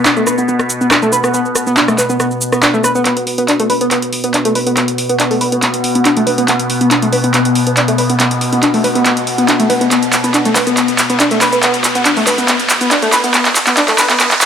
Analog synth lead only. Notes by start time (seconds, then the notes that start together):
0.05 D4
0.17 A3
0.27 B4
0.38 B3
0.48 B3
0.81 B3
0.91 D4
1.02 A3
1.12 B4
1.24 B3
1.34 B3
1.67 B3
1.77 D4
1.88 A3
1.98 B4
2.10 B3
2.20 B3
2.52 B3
2.62 D4
2.74 A3
2.84 B4
2.95 B3
3.05 B3
3.38 B3
3.48 D4
3.60 A3
3.70 B4
3.81 B3
3.91 B3
4.24 B3
4.34 D4
4.45 A3
4.55 B4
4.67 B3
4.77 B3
5.09 B3
5.19 D4
5.31 A3
5.41 B4
5.52 B3
5.62 B3
5.95 B3
6.05 D4
6.17 A3
6.27 B4
6.38 B3
6.48 B3
6.81 B3
6.91 D4
7.02 A3
7.12 B4
7.24 B3
7.34 B3
7.67 B3
7.77 D4
7.88 A3
7.98 B4
8.10 B3
8.20 B3
8.52 B3
8.63 D4
8.74 A3
8.84 B4
8.95 B3
9.05 B3
9.38 B3
9.48 D4
9.59 A3
9.70 B4
9.81 B3
9.91 B3
10.24 B3
10.34 D4
10.45 A3
10.56 B4
10.67 B3
10.77 B3
11.10 B3
11.20 D4
11.31 A3
11.41 B4
11.53 B3
11.63 B3
11.95 B3
12.05 D4
12.17 A3
12.27 B4
12.38 B3
12.48 B3
12.81 B3
12.91 D4
13.02 A3
13.13 B4
13.24 B3
13.34 B3
13.67 B3
13.77 D4
13.88 A3
13.98 B4
14.09 B3
14.20 B3